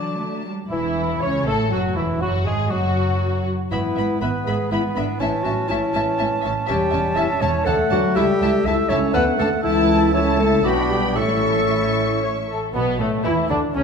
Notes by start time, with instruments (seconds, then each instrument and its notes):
Already playing: cello section D3, viola section F#3, violin section D4 A5, cor anglais D5
0.19 cello section A3
0.45 cello section G3
0.69 double bass section E1, cello section E2, french horn section E3, viola section E3, bassoon E3, violin section E4, cor anglais E4, clarinet E4
1.21 double bass section C#2, cello section C#3, viola section C#4, french horn section C#4, bassoon C#4, violin section C#5, clarinet C#5, cor anglais C#5
1.46 double bass section A1, cello section A2, viola section A3, french horn section A3, bassoon A3, violin section A4, cor anglais A4, clarinet A4
1.70 double bass section F#1, cello section F#2, french horn section F#3, viola section F#3, bassoon F#3, violin section F#4, cor anglais F#4, clarinet F#4
1.96 double bass section E1, cello section E2, viola section E3, bassoon E3, french horn section E3, violin section E4, clarinet E4, cor anglais E4
2.20 double bass section F#1, cello section F#2, viola section F#3, bassoon F#3, french horn section F#3, violin section F#4, clarinet F#4, cor anglais F#4
2.45 double bass section G#1, cello section G#2, french horn section G#3, bassoon G#3, viola section G#3, violin section G#4, clarinet G#4, cor anglais G#4
2.69 double bass section F#1, cello section F#2, french horn section F#3, viola section F#3, bassoon F#3, cor anglais F#4, violin section F#4
2.73 clarinet F#4
3.70 double bass section G#1, cello section G#2, french horn section E3, bassoon B3, viola section B3, clarinet E4, cor anglais B4, violin section E5 B5
3.95 double bass section G#1, cello section G#2, viola section B3, violin section E5 B5
4.19 double bass section G#1, cello section G#2, french horn section B3, bassoon B3, viola section B3, cor anglais B4, clarinet B4, violin section E5 B5
4.43 double bass section G#1, cello section G#2, french horn section G#3, clarinet G#4
4.47 viola section B3, violin section E5 B5
4.71 double bass section G#1, cello section G#2, french horn section E3, viola section B3, bassoon B3, clarinet E4, cor anglais B4, violin section E5 B5
4.95 double bass section G#1, cello section G#2, french horn section D3, viola section B3, clarinet D4, violin section E5 B5
5.20 double bass section A1, cello section A2, french horn section E3, viola section C#4, bassoon C#4, clarinet E4, violin section E5 A5, cor anglais A5
5.43 double bass section A1, cello section A2, french horn section F#3, viola section C#4, clarinet F#4, violin section E5 A5
5.68 double bass section A1, cello section A2, french horn section E3, bassoon C#4, viola section C#4, clarinet E4, violin section E5 A5, cor anglais A5
5.93 double bass section A1, cello section A2, viola section C#4, violin section E5 A5
6.18 double bass section A1, cello section A2, viola section C#4, violin section E5 A5
6.41 double bass section A1, cello section A2, viola section C#4, violin section E5 A5
6.66 double bass section E1, cello section E2, french horn section G3, bassoon C#4, viola section C#4, clarinet G4, violin section E5 A5, cor anglais A5
6.90 double bass section E1, cello section E2, viola section C#4, violin section E5 A5
7.15 double bass section E1, cello section E2, viola section C#4, french horn section E4, violin section E5 A5, clarinet E5
7.40 double bass section E1, cello section E2, viola section C#4, french horn section C#4, clarinet C#5, violin section E5 A5
7.65 double bass section D2, cello section D2, bassoon A3, french horn section A3, viola section D4, clarinet A4, violin section F#5 A5, cor anglais F#5
7.90 double bass section D2, cello section D2, french horn section F#3, viola section D4, clarinet F#4, violin section F#5 A5
8.15 double bass section C#2, cello section C#2, french horn section G3, viola section E4, clarinet G4, cor anglais E5, violin section E5 A5
8.40 double bass section C#2, cello section C#2, viola section E4, violin section E5 A5
8.64 double bass section C#2, cello section C#2, viola section E4, french horn section E4, clarinet E5, violin section E5 A5
8.89 cello section C#2, double bass section C#2, french horn section C#4, viola section E4, clarinet C#5, violin section E5 A5
9.14 cello section D2, double bass section D2, french horn section B3, viola section D4, clarinet B4, cor anglais F#5, violin section F#5 A5
9.37 cello section D2, double bass section D2, french horn section A3, viola section D4, clarinet A4, violin section F#5 A5
9.62 double bass section C#2, cello section C#2, french horn section E3, bassoon A3, viola section E4, clarinet E4, cor anglais E5, violin section A5
10.12 bassoon A3, french horn section C#4, viola section E4, clarinet C#5, cor anglais E5, violin section A5
10.40 french horn section A3, clarinet A4
10.64 double bass section B1, cello section B2, french horn section F#3, bassoon B3, viola section D4, clarinet F#4, cor anglais D5, violin section G5 B5
10.89 french horn section G3, clarinet G4
11.16 double bass section A1, cello section A2, french horn section A3, bassoon C#4, viola section E4, clarinet A4, cor anglais E5, violin section E5 C#6
11.71 viola section E4
12.23 viola section C#5
12.49 viola section A4
12.72 double bass section B1, cello section B2, bassoon B2, french horn section B3, cor anglais B3, violin section B3, clarinet B3, viola section B3, flute B4
12.98 double bass section A1, cello section A2, bassoon A2, french horn section A3, cor anglais A3, violin section A3, viola section A3, clarinet A3, flute A4
13.24 double bass section E2, bassoon E3, cello section E3, violin section E4, flute E4, french horn section E4, cor anglais E4, clarinet E4, viola section E4
13.49 double bass section D2, bassoon D3, cello section D3, french horn section D4, violin section D4, cor anglais D4, clarinet D4, flute D4, viola section D4
13.72 double bass section C#2, cello section C#3, bassoon C#3, french horn section C#4, flute C#4, violin section C#4, cor anglais C#4, clarinet C#4
13.77 viola section C#4